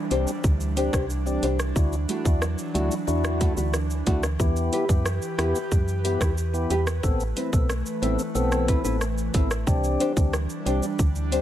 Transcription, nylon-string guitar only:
0.11 0.24 D4 medium
0.11 0.25 G4 medium
0.11 0.25 C5 medium
0.27 muted nylon-string guitar stroke medium
0.76 0.90 D4 medium
0.76 0.91 G4 medium
0.76 0.91 C5 loud
0.93 1.04 D4 medium
0.93 1.04 G4 medium
0.93 1.04 C5 medium
1.42 1.56 D4 loud
1.42 1.57 G4 medium
1.42 1.57 C5 loud
2.08 2.22 A3 medium
2.08 2.22 E4 medium
2.08 2.23 F#4 loud
2.74 2.88 A3 medium
2.74 2.88 E4 medium
2.74 2.89 F#4 loud
2.91 muted nylon-string guitar stroke soft
3.40 3.54 A3 medium
3.40 3.54 E4 medium
3.40 3.55 F#4 medium
3.57 3.68 A3 medium
3.57 3.68 E4 medium
3.57 3.68 F#4 medium
4.06 4.20 A3 medium
4.06 4.20 E4 medium
4.06 4.21 F#4 loud
4.72 4.86 E4 medium
4.72 4.86 G4 medium
4.72 4.87 B4 medium
5.38 5.52 E4 medium
5.38 5.52 G4 medium
5.38 5.52 B4 medium
5.55 muted nylon-string guitar stroke soft
6.04 6.18 E4 medium
6.04 6.18 G4 medium
6.04 6.18 B4 medium
6.21 6.32 E4 soft
6.21 6.32 G4 medium
6.21 6.31 B4 medium
6.70 6.84 E4 medium
6.70 6.84 G4 loud
6.70 6.84 B4 loud
7.36 7.50 C4 medium
7.36 7.50 E4 medium
7.36 7.50 B4 medium
8.02 8.16 C4 medium
8.02 8.16 E4 loud
8.02 8.16 B4 medium
8.19 muted nylon-string guitar stroke soft
8.68 8.82 C4 medium
8.68 8.82 E4 medium
8.68 8.82 B4 medium
8.84 8.96 C4 medium
8.84 8.95 E4 medium
8.84 8.95 B4 medium
9.34 9.47 C4 medium
9.34 9.48 E4 medium
9.34 9.48 B4 medium
10.00 10.13 D4 medium
10.00 10.14 G4 medium
10.00 10.14 C5 loud
10.66 10.79 D4 medium
10.66 10.80 G4 medium
10.66 10.80 C5 medium
10.82 muted nylon-string guitar stroke soft
11.32 11.42 D4 medium
11.32 11.42 G4 medium
11.32 11.42 C5 medium

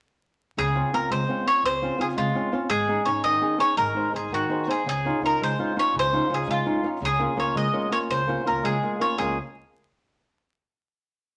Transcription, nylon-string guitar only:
0.58 0.92 C#3 soft
0.75 0.92 C4 soft
0.75 0.93 C#4 soft
0.75 0.92 F4 soft
0.93 1.22 C4 soft
0.93 1.22 C#4 soft
0.93 1.22 F4 soft
1.10 1.45 G#3 soft
1.28 1.44 C4 soft
1.28 1.45 C#4 soft
1.28 1.46 F4 soft
1.46 1.74 C4 soft
1.46 1.75 C#4 soft
1.46 1.75 F4 soft
1.64 1.98 C#3 medium
1.82 1.97 C4 soft
1.82 1.98 C#4 soft
1.82 1.98 F4 medium
1.98 2.27 C4 soft
1.98 2.27 C#4 soft
1.98 2.28 F4 medium
2.16 2.51 G#3 medium
2.35 2.51 C4 soft
2.35 2.52 C#4 soft
2.35 2.52 F4 soft
2.52 2.66 C4 soft
2.52 2.67 C#4 soft
2.52 2.67 F4 medium
2.70 3.05 G#3 medium
2.88 3.05 C#4 soft
2.88 3.05 D#4 soft
2.88 3.06 G#4 medium
3.06 3.35 C#4 soft
3.06 3.35 D#4 soft
3.06 3.35 G#4 medium
3.25 3.59 D#3 medium
3.41 3.57 C#4 soft
3.41 3.57 D#4 soft
3.41 3.58 G#4 medium
3.58 3.73 C#4 soft
3.58 3.73 D#4 soft
3.58 3.73 G#4 soft
3.77 4.12 G#3 medium
3.94 4.11 D#4 soft
3.94 4.12 G#4 soft
3.94 4.12 C5 soft
4.13 4.42 D#4 soft
4.13 4.42 G#4 soft
4.13 4.42 C5 medium
4.32 4.67 D#3 soft
4.49 4.66 D#4 soft
4.49 4.67 G#4 soft
4.49 4.67 C5 soft
4.67 4.82 D#4 soft
4.67 4.82 G#4 soft
4.67 4.82 C5 soft
4.87 5.22 C#3 medium
5.05 5.22 C#4 soft
5.05 5.22 D#4 soft
5.05 5.23 F4 medium
5.23 5.52 C#4 soft
5.23 5.52 D#4 soft
5.23 5.52 F4 soft
5.41 5.76 G#3 medium
5.59 5.75 C#4 soft
5.59 5.75 D#4 soft
5.59 5.75 F4 medium
5.76 6.05 C#4 soft
5.76 6.05 D#4 soft
5.76 6.05 F4 soft
5.95 6.29 C#3 medium
6.12 6.28 C#4 soft
6.12 6.29 D#4 soft
6.12 6.29 F4 medium
6.29 6.58 C#4 soft
6.29 6.59 D#4 soft
6.29 6.59 F4 soft
6.47 6.82 G#3 medium
6.66 6.82 C#4 soft
6.66 6.83 D#4 soft
6.66 6.83 F4 soft
6.83 6.98 C#4 medium
6.83 6.98 D#4 soft
6.83 6.98 F4 soft
7.02 7.37 C#3 medium
7.19 7.35 A#3 soft
7.19 7.36 C#4 soft
7.19 7.36 F4 medium
7.36 7.66 A#3 soft
7.36 7.66 C#4 soft
7.36 7.66 F4 soft
7.55 7.91 G#3 medium
7.73 7.89 A#3 soft
7.73 7.90 C#4 soft
7.73 7.90 F4 soft
7.90 8.20 A#3 soft
7.90 8.21 C#4 soft
7.90 8.21 F4 medium
8.10 8.46 C#3 medium
8.27 8.44 A#3 soft
8.27 8.45 C#4 soft
8.27 8.45 F4 medium
8.45 8.75 A#3 soft
8.45 8.76 C#4 soft
8.45 8.76 F4 soft
8.63 9.00 G#3 medium
8.82 8.98 A#3 soft
8.82 9.00 C#4 soft
8.82 8.99 F4 soft
8.99 9.15 A#3 soft
8.99 9.16 C#4 soft
8.99 9.16 F4 soft
9.17 9.36 C#3 soft
9.17 9.37 G#3 soft
9.17 9.37 A#3 soft
9.17 9.37 C#4 soft
9.17 9.38 F4 medium

